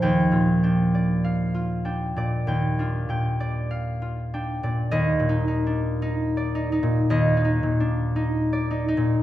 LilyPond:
<<
  \new Staff \with { instrumentName = "Harp" } { \time 4/4 \key ees \major \tempo 4 = 53 << { g''1 | ees''1 | } \\ { <ees'' bes''>16 f'16 g''16 d''16 f''16 f'16 g''16 d''16 g''16 f'16 g''16 d''16 f''16 f'16 g''16 d''16~ | \tuplet 3/2 { d''8 ees'8 d'8 ees'8 d''8 ees'8 ees''8 ees'8 d'8 ees'8 d''8 ees'8 } | } >> }
  \new Staff \with { instrumentName = "Harp" } { \clef bass \time 4/4 \key ees \major <ees, f ees'>16 bes,16 d'4 d'16 bes,16 ees,16 d'16 bes,4 d'16 bes,16 | ees,16 bes,16 ees'4 ees'16 bes,16 ees,16 ees'16 bes,4 ees'16 bes,16 | }
>>